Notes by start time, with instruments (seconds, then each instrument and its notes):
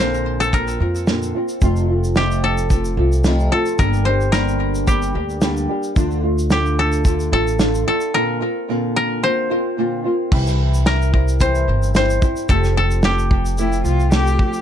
Already playing: upright bass A#1, koto A#4
0.00 nylon-string guitar A#2 D3 A#3 C4 F4, koto C5
0.14 shaker
0.40 koto A4, shaker
0.53 nylon-string guitar D3 A#3 C4 F4, koto A#4, kick, shaker
0.68 shaker
0.80 upright bass F2, nylon-string guitar A#3 C4 F4
0.95 shaker
1.07 nylon-string guitar A#2 D3 A#3 C4 F4, snare, shaker
1.23 shaker
1.35 nylon-string guitar A#3 C4 F4
1.49 shaker
1.61 upright bass F1, nylon-string guitar F2 C3 F3 A3 C4 F4, kick, shaker
1.76 shaker
1.88 nylon-string guitar F3 A3 C4 F4
2.04 shaker
2.16 nylon-string guitar F2 C3 F3 A3 C4 F4, koto G4, snare, shaker
2.31 shaker
2.44 koto A4
2.58 shaker
2.70 nylon-string guitar F3 A3 C4 F4, kick, shaker
2.85 shaker
2.97 upright bass C2, nylon-string guitar F3 A3 C4 F4
3.12 shaker
3.24 nylon-string guitar F2 C3 F3 A3 C4 F4, snare, shaker
3.39 shaker
3.52 nylon-string guitar F3 A3 C4 F4, koto A4
3.66 shaker
3.78 upright bass G1, nylon-string guitar G2 D3 G3 A#3 D4 G4, koto A#4, kick, shaker
3.93 shaker
4.05 nylon-string guitar G3 A#3 D4 G4, koto C5
4.21 shaker
4.32 nylon-string guitar G2 D3 G3 A#3 D4 G4, koto A#4, snare, shaker
4.48 shaker
4.75 shaker
4.87 nylon-string guitar G3 A#3 D4 G4, koto G4, kick, shaker
5.02 shaker
5.14 upright bass D2, nylon-string guitar G3 A#3 D4 G4
5.30 shaker
5.41 nylon-string guitar G2 D3 G3 A#3 D4 G4, snare, shaker
5.57 shaker
5.69 nylon-string guitar G3 A#3 D4 G4
5.83 shaker
5.96 upright bass D2, nylon-string guitar D3 A3 D4 F4, kick, shaker
6.11 shaker
6.23 nylon-string guitar A3 D4 F4
6.38 shaker
6.50 nylon-string guitar D3 A3 D4 F4, koto G4, snare, shaker
6.66 shaker
6.79 koto A4
6.92 shaker
7.05 nylon-string guitar D3 A3 D4 F4, kick, shaker
7.20 shaker
7.32 upright bass A1, nylon-string guitar A3 D4 F4, koto A4
7.47 shaker
7.59 nylon-string guitar D3 A3 D4 F4, snare, shaker
7.75 shaker
7.86 nylon-string guitar A3 D4 F4, koto A4
8.01 shaker
8.14 nylon-string guitar A#2 D3 A#3 C4 F4, koto A#4
8.41 nylon-string guitar A#3 C4 F4
8.68 nylon-string guitar A#2 D3 A#3 C4 F4
8.96 koto A#4
9.23 nylon-string guitar D3 A#3 C4 F4, koto C5
9.50 nylon-string guitar A#3 C4 F4
9.77 nylon-string guitar A#2 D3 A#3 C4 F4
10.04 nylon-string guitar A#3 C4 F4
10.32 upright bass C2, nylon-string guitar C3 E3 G3 C4 E4, kick, crash
10.47 snare, shaker
10.74 shaker
10.86 nylon-string guitar E3 G3 C4 E4, koto A#4, snare, shaker
11.02 shaker
11.13 nylon-string guitar G3 C4 E4, kick
11.28 shaker
11.40 nylon-string guitar C3 E3 G3 C4 E4, koto C5, kick, shaker
11.55 shaker
11.68 upright bass G1
11.83 shaker
11.95 nylon-string guitar E3 G3 C4 E4, koto C5, snare, shaker
12.10 shaker
12.21 nylon-string guitar G3 C4 E4, kick, shaker
12.36 shaker
12.49 upright bass F1, nylon-string guitar F3 A3 C4 G4, koto A4, kick, shaker
12.64 snare, shaker
12.77 koto A4
12.91 shaker
13.03 nylon-string guitar F3 A3 C4 G4, koto G4, snare, shaker
13.19 shaker
13.31 kick
13.45 shaker
13.58 nylon-string guitar F3 A3 C4 G4, cello E4, shaker
13.73 shaker
13.85 upright bass C2, cello F4, shaker
14.00 shaker
14.11 nylon-string guitar F3 A3 C4 G4, cello G4, snare, shaker
14.27 shaker
14.39 kick
14.53 shaker